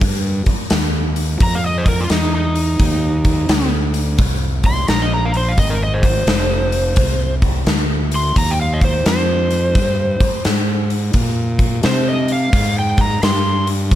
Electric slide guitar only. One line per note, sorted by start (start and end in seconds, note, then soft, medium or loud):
1.43 1.57 A#5 medium
1.55 1.63 F5 loud
1.66 1.87 D#5 medium
1.78 1.83 C5 medium
1.88 2.02 A#4 medium
2.00 2.09 F4 medium
2.12 2.34 D#4 medium
2.35 3.69 D#4 medium
4.66 4.88 C6 loud
4.89 5.04 A#5 medium
5.02 5.11 D#5 medium
5.14 5.34 A#5 medium
5.25 5.31 F5 medium
5.37 5.51 C5 medium
5.49 5.57 F5 medium
5.59 5.73 D#5 medium
5.70 5.80 A#4 medium
5.83 6.04 D#5 medium
5.94 7.34 C5 medium
8.16 8.37 C6 loud
8.38 8.52 A#5 medium
8.51 8.59 G5 medium
8.62 8.82 F5 medium
8.74 8.79 D#5 medium
8.84 9.06 C5 medium
9.08 10.42 C5 loud
11.86 12.07 C5 medium
12.09 12.30 D#5 medium
12.32 12.76 F5 medium
12.79 13.00 G5 medium
13.01 13.22 A#5 medium
13.24 13.67 C6 loud